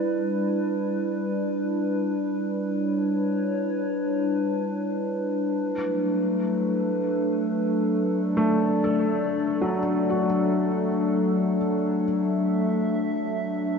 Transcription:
Already playing: ambient pad G3 D4 E4 B4 D5
2.57 ambient pad C#5
5.57 ambient pad F#3
5.63 ambient pad A3
5.98 ambient pad A4
8.01 ambient pad D5
8.37 felt piano A3
8.84 felt piano A4
9.61 felt piano F#3
10.10 felt piano F#4
12.05 ambient pad E5

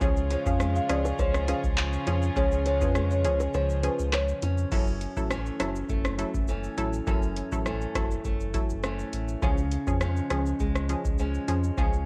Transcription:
Already playing: steel-string acoustic guitar C#4
0.01 sub bass C#2, string section C#3 C#4 F4 G#4, steel-string acoustic guitar C#3, synth pluck F3 C#4 G#4, marimba C#5, kick, shaker
0.17 shaker
0.31 steel-string acoustic guitar F3 G#3 C#4, marimba C#5, closed hi-hat, high bongo, shaker
0.46 sub bass F2, synth pluck F3 C#4 G#4, marimba F5, kick, shaker
0.60 steel-string acoustic guitar G#3, cross-stick, shaker
0.76 marimba F5, shaker
0.89 sub bass C#2, synth pluck F3 C#4 G#4, marimba D5, cross-stick, closed hi-hat, shaker
1.05 high bongo, shaker
1.19 sub bass C#2, steel-string acoustic guitar F3, marimba C#5, kick, high bongo, shaker
1.34 cross-stick, shaker
1.48 synth pluck F3 C#4 G#4, marimba F5, closed hi-hat, high bongo, shaker
1.64 sub bass C#2, kick, shaker
1.77 clap, shaker
1.93 shaker
2.07 sub bass F2, synth pluck F3 C#4 G#4, steel-string acoustic guitar C#4, closed hi-hat, low bongo, shaker
2.22 shaker
2.36 sub bass C#2, steel-string acoustic guitar C#3, synth pluck F3 C#4 G#4, marimba C#5, kick, shaker
2.52 shaker
2.66 steel-string acoustic guitar F3 G#3 C#4, marimba C#5, closed hi-hat, high bongo, shaker
2.81 sub bass F2, synth pluck F3 C#4 G#4, marimba B4, kick, shaker
2.95 steel-string acoustic guitar G#3, cross-stick, shaker
3.11 marimba C#5, shaker
3.24 sub bass C#2, synth pluck F3 C#4 G#4, marimba C#5, closed hi-hat, shaker
3.40 high bongo, shaker
3.54 sub bass C#2, steel-string acoustic guitar F3, marimba C#5, high bongo, shaker
3.70 shaker
3.83 synth pluck F3 C#4 G#4, marimba B4, closed hi-hat, high bongo, shaker
3.99 sub bass C#2, shaker
4.13 marimba C#5, cross-stick, clap, high bongo, shaker
4.28 shaker
4.42 sub bass F2, steel-string acoustic guitar C#4, closed hi-hat, low bongo, shaker
4.58 shaker
4.71 sub bass F#1, steel-string acoustic guitar F#2 C#4, synth pluck F#3 E4 A4, kick, crash, shaker
4.87 shaker
5.01 closed hi-hat, shaker
5.17 sub bass A1, synth pluck F#3 E4 A4, kick, shaker
5.30 steel-string acoustic guitar E3 A3 C#4, cross-stick, shaker
5.46 shaker
5.60 sub bass F#1, synth pluck F#3 E4 A4, cross-stick, closed hi-hat, shaker
5.76 shaker
5.89 sub bass F#1, steel-string acoustic guitar A3, kick, shaker
6.05 cross-stick, shaker
6.18 synth pluck F#3 E4 A4, closed hi-hat, shaker
6.34 sub bass F#1, kick, shaker
6.48 steel-string acoustic guitar E3 A3 C#4, shaker
6.64 shaker
6.78 sub bass A1, synth pluck F#3 E4 A4, closed hi-hat, shaker
6.93 shaker
7.07 sub bass F#1, steel-string acoustic guitar F#2 C#4, synth pluck F#3 E4 A4, kick, shaker
7.23 shaker
7.36 closed hi-hat, shaker
7.52 sub bass A1, synth pluck F#3 E4 A4, kick, shaker
7.66 steel-string acoustic guitar E3 A3 C#4, cross-stick, shaker
7.81 shaker
7.95 sub bass F#1, synth pluck F#3 E4 A4, kick, cross-stick, closed hi-hat, shaker
8.11 shaker
8.24 sub bass F#1, steel-string acoustic guitar A3, kick, shaker
8.40 shaker
8.54 synth pluck F#3 E4 A4, kick, closed hi-hat, shaker
8.70 sub bass F#1, shaker
8.83 steel-string acoustic guitar E3 A3 C#4, cross-stick, shaker
8.99 shaker
9.13 sub bass A1, closed hi-hat, shaker
9.28 shaker
9.42 sub bass C#2, steel-string acoustic guitar C#3 C#4, synth pluck F3 C#4 G#4, kick, shaker
9.58 shaker
9.72 closed hi-hat, shaker
9.87 sub bass F2, synth pluck F3 C#4 G#4, kick, shaker
10.01 steel-string acoustic guitar F3 G#3 C#4, cross-stick, shaker
10.17 shaker
10.30 sub bass C#2, synth pluck F3 C#4 G#4, cross-stick, closed hi-hat, shaker
10.46 shaker
10.60 sub bass C#2, steel-string acoustic guitar G#3, kick, shaker
10.76 cross-stick, shaker
10.89 synth pluck F3 C#4 G#4, closed hi-hat, shaker
11.05 sub bass C#2, kick, shaker
11.19 steel-string acoustic guitar F3 G#3 C#4, shaker
11.34 shaker
11.48 sub bass F2, synth pluck F3 C#4 G#4, closed hi-hat, shaker
11.64 shaker
11.77 sub bass C#2, steel-string acoustic guitar C#3 C#4, synth pluck F3 C#4 G#4, kick, shaker
11.93 shaker

